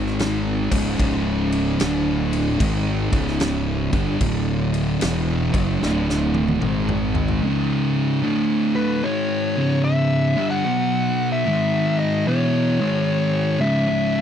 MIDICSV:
0, 0, Header, 1, 5, 480
1, 0, Start_track
1, 0, Tempo, 804290
1, 596, Time_signature, 4, 2, 24, 8
1, 8482, End_track
2, 0, Start_track
2, 0, Title_t, "Lead electric guitar"
2, 0, Program_c, 0, 29
2, 5224, Note_on_c, 0, 71, 89
2, 5394, Note_on_c, 0, 73, 84
2, 5399, Note_off_c, 0, 71, 0
2, 5851, Note_off_c, 0, 73, 0
2, 5874, Note_on_c, 0, 76, 90
2, 6248, Note_off_c, 0, 76, 0
2, 6270, Note_on_c, 0, 78, 89
2, 6728, Note_off_c, 0, 78, 0
2, 6759, Note_on_c, 0, 76, 105
2, 7155, Note_off_c, 0, 76, 0
2, 7157, Note_on_c, 0, 75, 96
2, 7324, Note_on_c, 0, 73, 89
2, 7326, Note_off_c, 0, 75, 0
2, 8121, Note_on_c, 0, 76, 104
2, 8140, Note_off_c, 0, 73, 0
2, 8482, Note_off_c, 0, 76, 0
2, 8482, End_track
3, 0, Start_track
3, 0, Title_t, "Distorted electric guitar"
3, 0, Program_c, 1, 30
3, 0, Note_on_c, 1, 44, 93
3, 0, Note_on_c, 1, 51, 100
3, 0, Note_on_c, 1, 56, 102
3, 418, Note_off_c, 1, 44, 0
3, 420, Note_off_c, 1, 51, 0
3, 422, Note_off_c, 1, 56, 0
3, 427, Note_on_c, 1, 37, 99
3, 432, Note_on_c, 1, 44, 99
3, 434, Note_on_c, 1, 49, 113
3, 585, Note_off_c, 1, 37, 0
3, 588, Note_off_c, 1, 44, 0
3, 591, Note_off_c, 1, 49, 0
3, 592, Note_on_c, 1, 37, 95
3, 595, Note_on_c, 1, 44, 99
3, 598, Note_on_c, 1, 49, 117
3, 1069, Note_off_c, 1, 37, 0
3, 1070, Note_off_c, 1, 44, 0
3, 1072, Note_off_c, 1, 49, 0
3, 1072, Note_on_c, 1, 38, 99
3, 1075, Note_on_c, 1, 45, 102
3, 1082, Note_on_c, 1, 50, 98
3, 1549, Note_off_c, 1, 38, 0
3, 1550, Note_off_c, 1, 45, 0
3, 1553, Note_off_c, 1, 50, 0
3, 1554, Note_on_c, 1, 44, 99
3, 1559, Note_on_c, 1, 51, 98
3, 1563, Note_on_c, 1, 56, 108
3, 1858, Note_off_c, 1, 44, 0
3, 1861, Note_off_c, 1, 51, 0
3, 1863, Note_off_c, 1, 56, 0
3, 1864, Note_on_c, 1, 37, 93
3, 1868, Note_on_c, 1, 44, 95
3, 1869, Note_on_c, 1, 49, 88
3, 2336, Note_off_c, 1, 37, 0
3, 2338, Note_off_c, 1, 44, 0
3, 2339, Note_off_c, 1, 49, 0
3, 2349, Note_on_c, 1, 43, 97
3, 2350, Note_on_c, 1, 50, 112
3, 2353, Note_on_c, 1, 55, 109
3, 2510, Note_off_c, 1, 43, 0
3, 2511, Note_off_c, 1, 50, 0
3, 2512, Note_off_c, 1, 55, 0
3, 2512, Note_on_c, 1, 38, 83
3, 2514, Note_on_c, 1, 45, 106
3, 2520, Note_on_c, 1, 50, 103
3, 2988, Note_off_c, 1, 38, 0
3, 2990, Note_off_c, 1, 45, 0
3, 2992, Note_off_c, 1, 50, 0
3, 2994, Note_on_c, 1, 40, 97
3, 2995, Note_on_c, 1, 47, 96
3, 2997, Note_on_c, 1, 52, 109
3, 3298, Note_off_c, 1, 40, 0
3, 3299, Note_off_c, 1, 47, 0
3, 3300, Note_off_c, 1, 52, 0
3, 3305, Note_on_c, 1, 42, 92
3, 3306, Note_on_c, 1, 49, 96
3, 3311, Note_on_c, 1, 54, 107
3, 3465, Note_off_c, 1, 42, 0
3, 3468, Note_on_c, 1, 38, 94
3, 3469, Note_off_c, 1, 49, 0
3, 3471, Note_off_c, 1, 54, 0
3, 3474, Note_on_c, 1, 45, 105
3, 3477, Note_on_c, 1, 50, 94
3, 3943, Note_off_c, 1, 38, 0
3, 3945, Note_off_c, 1, 45, 0
3, 3946, Note_on_c, 1, 44, 93
3, 3947, Note_on_c, 1, 51, 87
3, 3951, Note_off_c, 1, 50, 0
3, 3954, Note_on_c, 1, 56, 89
3, 4423, Note_off_c, 1, 44, 0
3, 4426, Note_off_c, 1, 51, 0
3, 4428, Note_on_c, 1, 37, 101
3, 4430, Note_off_c, 1, 56, 0
3, 4430, Note_on_c, 1, 44, 106
3, 4433, Note_on_c, 1, 49, 100
3, 4905, Note_off_c, 1, 37, 0
3, 4907, Note_off_c, 1, 44, 0
3, 4907, Note_on_c, 1, 38, 103
3, 4909, Note_off_c, 1, 49, 0
3, 4909, Note_on_c, 1, 45, 101
3, 4914, Note_on_c, 1, 50, 102
3, 5387, Note_off_c, 1, 38, 0
3, 5387, Note_off_c, 1, 45, 0
3, 5390, Note_off_c, 1, 50, 0
3, 5390, Note_on_c, 1, 44, 102
3, 5394, Note_on_c, 1, 51, 96
3, 5398, Note_on_c, 1, 56, 112
3, 5697, Note_off_c, 1, 44, 0
3, 5699, Note_off_c, 1, 51, 0
3, 5701, Note_off_c, 1, 56, 0
3, 5708, Note_on_c, 1, 37, 87
3, 5712, Note_on_c, 1, 44, 96
3, 5716, Note_on_c, 1, 49, 99
3, 6180, Note_off_c, 1, 37, 0
3, 6182, Note_off_c, 1, 44, 0
3, 6184, Note_off_c, 1, 49, 0
3, 6186, Note_on_c, 1, 43, 95
3, 6191, Note_on_c, 1, 50, 112
3, 6194, Note_on_c, 1, 55, 109
3, 6350, Note_off_c, 1, 43, 0
3, 6353, Note_off_c, 1, 50, 0
3, 6354, Note_off_c, 1, 55, 0
3, 6358, Note_on_c, 1, 47, 97
3, 6361, Note_on_c, 1, 54, 120
3, 6364, Note_on_c, 1, 59, 108
3, 6833, Note_off_c, 1, 47, 0
3, 6834, Note_off_c, 1, 54, 0
3, 6836, Note_off_c, 1, 59, 0
3, 6838, Note_on_c, 1, 44, 101
3, 6842, Note_on_c, 1, 51, 106
3, 6845, Note_on_c, 1, 56, 122
3, 7314, Note_off_c, 1, 44, 0
3, 7316, Note_off_c, 1, 51, 0
3, 7317, Note_off_c, 1, 56, 0
3, 7322, Note_on_c, 1, 40, 94
3, 7328, Note_on_c, 1, 47, 108
3, 7331, Note_on_c, 1, 52, 104
3, 7624, Note_off_c, 1, 40, 0
3, 7628, Note_off_c, 1, 47, 0
3, 7629, Note_off_c, 1, 52, 0
3, 7636, Note_on_c, 1, 44, 93
3, 7642, Note_on_c, 1, 51, 98
3, 7642, Note_on_c, 1, 56, 89
3, 8106, Note_off_c, 1, 44, 0
3, 8109, Note_off_c, 1, 51, 0
3, 8109, Note_off_c, 1, 56, 0
3, 8115, Note_on_c, 1, 37, 115
3, 8120, Note_on_c, 1, 44, 111
3, 8122, Note_on_c, 1, 49, 103
3, 8276, Note_off_c, 1, 37, 0
3, 8279, Note_off_c, 1, 44, 0
3, 8280, Note_off_c, 1, 49, 0
3, 8283, Note_on_c, 1, 37, 104
3, 8286, Note_on_c, 1, 44, 108
3, 8290, Note_on_c, 1, 49, 103
3, 8482, Note_off_c, 1, 37, 0
3, 8482, Note_off_c, 1, 44, 0
3, 8482, Note_off_c, 1, 49, 0
3, 8482, End_track
4, 0, Start_track
4, 0, Title_t, "Fingered electric bass"
4, 0, Program_c, 2, 33
4, 0, Note_on_c, 2, 32, 92
4, 403, Note_off_c, 2, 32, 0
4, 427, Note_on_c, 2, 25, 101
4, 583, Note_off_c, 2, 25, 0
4, 593, Note_on_c, 2, 25, 93
4, 1050, Note_off_c, 2, 25, 0
4, 1076, Note_on_c, 2, 26, 87
4, 1532, Note_off_c, 2, 26, 0
4, 1554, Note_on_c, 2, 32, 99
4, 1846, Note_off_c, 2, 32, 0
4, 1863, Note_on_c, 2, 25, 98
4, 2322, Note_off_c, 2, 25, 0
4, 2343, Note_on_c, 2, 31, 99
4, 2501, Note_off_c, 2, 31, 0
4, 2508, Note_on_c, 2, 26, 91
4, 2968, Note_off_c, 2, 26, 0
4, 2996, Note_on_c, 2, 28, 86
4, 3287, Note_off_c, 2, 28, 0
4, 3304, Note_on_c, 2, 30, 83
4, 3461, Note_off_c, 2, 30, 0
4, 3475, Note_on_c, 2, 26, 102
4, 3931, Note_off_c, 2, 26, 0
4, 3951, Note_on_c, 2, 32, 98
4, 4409, Note_off_c, 2, 32, 0
4, 8482, End_track
5, 0, Start_track
5, 0, Title_t, "Drums"
5, 39, Note_on_c, 9, 38, 29
5, 99, Note_off_c, 9, 38, 0
5, 115, Note_on_c, 9, 49, 77
5, 122, Note_on_c, 9, 38, 112
5, 175, Note_off_c, 9, 49, 0
5, 182, Note_off_c, 9, 38, 0
5, 427, Note_on_c, 9, 36, 101
5, 427, Note_on_c, 9, 49, 100
5, 487, Note_off_c, 9, 36, 0
5, 487, Note_off_c, 9, 49, 0
5, 593, Note_on_c, 9, 36, 108
5, 596, Note_on_c, 9, 49, 78
5, 653, Note_off_c, 9, 36, 0
5, 655, Note_off_c, 9, 49, 0
5, 910, Note_on_c, 9, 49, 66
5, 969, Note_off_c, 9, 49, 0
5, 1073, Note_on_c, 9, 49, 75
5, 1080, Note_on_c, 9, 38, 111
5, 1132, Note_off_c, 9, 49, 0
5, 1139, Note_off_c, 9, 38, 0
5, 1390, Note_on_c, 9, 49, 68
5, 1449, Note_off_c, 9, 49, 0
5, 1553, Note_on_c, 9, 36, 112
5, 1554, Note_on_c, 9, 49, 89
5, 1613, Note_off_c, 9, 36, 0
5, 1614, Note_off_c, 9, 49, 0
5, 1866, Note_on_c, 9, 36, 109
5, 1867, Note_on_c, 9, 49, 70
5, 1926, Note_off_c, 9, 36, 0
5, 1926, Note_off_c, 9, 49, 0
5, 1956, Note_on_c, 9, 38, 33
5, 2016, Note_off_c, 9, 38, 0
5, 2029, Note_on_c, 9, 49, 78
5, 2036, Note_on_c, 9, 38, 116
5, 2088, Note_off_c, 9, 49, 0
5, 2096, Note_off_c, 9, 38, 0
5, 2344, Note_on_c, 9, 49, 62
5, 2345, Note_on_c, 9, 36, 112
5, 2404, Note_off_c, 9, 49, 0
5, 2405, Note_off_c, 9, 36, 0
5, 2510, Note_on_c, 9, 49, 87
5, 2511, Note_on_c, 9, 36, 109
5, 2570, Note_off_c, 9, 49, 0
5, 2571, Note_off_c, 9, 36, 0
5, 2827, Note_on_c, 9, 49, 68
5, 2887, Note_off_c, 9, 49, 0
5, 2990, Note_on_c, 9, 49, 87
5, 2997, Note_on_c, 9, 38, 111
5, 3050, Note_off_c, 9, 49, 0
5, 3057, Note_off_c, 9, 38, 0
5, 3306, Note_on_c, 9, 36, 102
5, 3308, Note_on_c, 9, 49, 66
5, 3365, Note_off_c, 9, 36, 0
5, 3368, Note_off_c, 9, 49, 0
5, 3478, Note_on_c, 9, 38, 65
5, 3538, Note_off_c, 9, 38, 0
5, 3640, Note_on_c, 9, 38, 62
5, 3699, Note_off_c, 9, 38, 0
5, 3786, Note_on_c, 9, 48, 78
5, 3845, Note_off_c, 9, 48, 0
5, 3869, Note_on_c, 9, 48, 68
5, 3929, Note_off_c, 9, 48, 0
5, 3949, Note_on_c, 9, 47, 84
5, 4009, Note_off_c, 9, 47, 0
5, 4110, Note_on_c, 9, 45, 84
5, 4170, Note_off_c, 9, 45, 0
5, 4266, Note_on_c, 9, 43, 96
5, 4326, Note_off_c, 9, 43, 0
5, 4347, Note_on_c, 9, 43, 82
5, 4406, Note_off_c, 9, 43, 0
5, 8482, End_track
0, 0, End_of_file